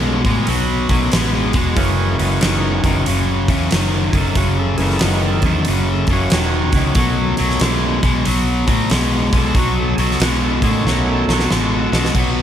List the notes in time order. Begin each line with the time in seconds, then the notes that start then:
Already playing: B1 B2 D#3 G#3 A3 C#4
0.25 A2 B2 G#3, kick, open hi-hat
0.29 G#4
0.45 B1 B2 F#3 A#4, open hi-hat
0.50 B4
0.89 B1 B2 D#3 F#3 A3 C#4, kick, open hi-hat
1.11 A1 B2 G#3, snare, open hi-hat
1.34 G#4
1.53 E1 B2 G#3 F#4, kick, open hi-hat
1.76 F#1 F#2 C#3 E3 G#3 A#3 C#4 F#4, kick, open hi-hat
2.18 F#1 F#2 C#3, open hi-hat
2.41 F#1 F#2 D#3, snare, open hi-hat
2.83 F#1 F#2 D#3 E3 G#3 A#3, kick, open hi-hat
3.06 F#1 F#2 C#3, open hi-hat
3.48 E2 F#2 C#3, kick, open hi-hat
3.71 F#1 F#2 D#3, snare, open hi-hat
4.12 F#1 F#2 D#3 G#4, kick, open hi-hat
4.17 A4
4.35 F#1 F#2 C#3 F#4, kick, open hi-hat
4.59 A4
4.77 F#1 F#2 C#3 E3 G#3 A#3 G#4, open hi-hat
4.82 A4
4.90 snare
4.99 F#1 F#2 D#3 F#4, snare, open hi-hat
5.26 A4
5.42 E2 F#2 D#3 G#4, kick, open hi-hat
5.48 A4
5.65 F#1 F#2 C#3, open hi-hat
5.69 F#4
5.92 A4
6.07 F#1 F#2 C#3, kick, open hi-hat
6.13 C#4 F#4
6.30 E1 F#2 D#3, snare, open hi-hat
6.72 C#2 F#2 D#3, kick, open hi-hat
6.95 B1 B2 D#3 F#3 A3 C#4, kick, open hi-hat
7.37 B1 B2 F#3, open hi-hat
7.50 snare
7.60 B1 B2 G#3, snare, open hi-hat
8.03 B1 B2 G#3, kick, open hi-hat
8.25 B1 B2 F#3, open hi-hat
8.67 A2 B2 F#3, kick, open hi-hat
8.90 B1 B2 G#3, snare, open hi-hat
9.32 B1 B2 G#3 G#4, kick, open hi-hat
9.37 A4
9.55 B1 B2 F#3, kick, open hi-hat
9.59 F#4
9.80 A4
9.95 B1 B2 G#4, open hi-hat
9.99 F#3 A4
10.11 snare
10.20 B1 B2 G#3 F#4, snare, open hi-hat
10.43 A4
10.62 A2 B2 D#3 G#3 A3 C#4 G#4, kick, open hi-hat
10.67 A4
10.85 B1 B2 F#3, snare
10.89 F#4
11.11 A4
11.28 B1 B2 F#3, snare
11.32 F#4 A4
11.39 snare
11.50 A1 B2 G#3, snare
11.92 B1 B2 G#3, snare
12.05 snare
12.15 B1 B2 F#3 B3, kick, crash